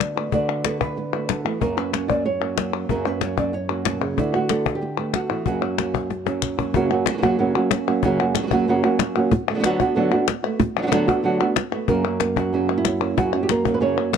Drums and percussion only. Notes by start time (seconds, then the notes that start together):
0.00 cajon slap, clap
0.32 cajon bass
0.65 cajon slap, clap
0.81 cajon bass
0.98 cajon slap
1.13 cajon slap
1.29 cajon slap, clap
1.61 cajon bass
1.78 cajon slap
1.93 cajon slap, clap
2.10 cajon bass
2.26 cajon slap
2.42 cajon slap, clap
2.58 cajon slap, clap
2.89 cajon bass
3.05 cajon slap
3.21 cajon slap, clap
3.37 cajon bass
3.70 cajon slap
3.85 cajon slap, clap
4.02 clap
4.18 cajon bass
4.49 cajon slap, clap
4.66 cajon bass
4.82 cajon slap
4.97 cajon slap
5.14 cajon slap, clap
5.46 cajon bass
5.78 cajon slap, clap
5.94 cajon bass, clap
6.10 cajon slap
6.26 cajon slap
6.42 cajon bass, clap
6.59 cajon bass, clap
6.74 cajon bass
6.91 clap
7.06 cajon slap, clap
7.23 cajon bass
7.39 cajon slap
7.55 cajon slap
7.71 cajon slap, clap
7.88 clap
8.03 cajon bass
8.19 cajon slap
8.35 cajon slap, clap
8.51 cajon bass
8.84 cajon slap
8.99 cajon slap, clap
9.31 cajon bass
9.48 cajon slap
9.64 cajon slap, clap
9.80 cajon bass, clap
10.12 cajon slap
10.28 cajon slap, clap
10.60 cajon bass
10.76 cajon slap
10.92 cajon slap, clap
11.08 cajon bass, clap
11.25 cajon slap
11.56 cajon slap, clap
11.88 cajon bass
12.20 cajon slap, clap
12.36 cajon bass
12.53 cajon slap
12.69 cajon slap
12.85 cajon slap, clap
13.01 clap
13.18 cajon bass
13.34 cajon slap
13.49 cajon slap, clap
13.65 cajon bass
13.81 cajon slap
13.97 cajon slap
14.13 cajon slap, clap